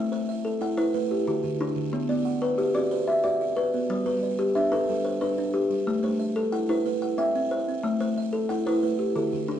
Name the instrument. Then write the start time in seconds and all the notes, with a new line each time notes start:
kalimba
Already playing: A3 C4
0.12 A3 C5
0.29 E5
0.45 A4
0.61 E4 F#5
0.77 E4 B4 C5
0.94 A3 B4
1.11 G4
1.27 D3 F#4
1.44 D3
1.61 D4
1.76 D3
1.93 B3
2.09 B3 D5
2.25 F#5
2.42 B4
2.58 F#4 G4
2.75 C4 F#4 D5
2.91 B4 C5
3.08 E5
3.24 F#4 D5 F#5
3.41 F#4
3.57 B4
3.74 B3
3.90 G3
4.06 G3 B4
4.23 D5
4.39 G4
4.55 D4 E5
4.72 D4 A4 B4
4.89 G3 A4
5.05 C5
5.21 D4 B4 D5
5.38 D4
5.54 G4
5.70 G3
5.87 A3
6.03 A3 C5
6.19 E5
6.36 A4
6.52 E4 F#5
6.69 E4 B4 C5
6.86 A3 B4
7.02 F#5
7.18 C4 E5 G5
7.36 C4
7.51 C5
7.69 C4
7.83 A3
8.01 A3 C5
8.18 E5
8.33 A4
8.49 E4 F#5
8.66 E4 B4 C5
8.83 A3 B4
8.99 G4
9.16 D3 F#4 A4
9.33 D3
9.48 D4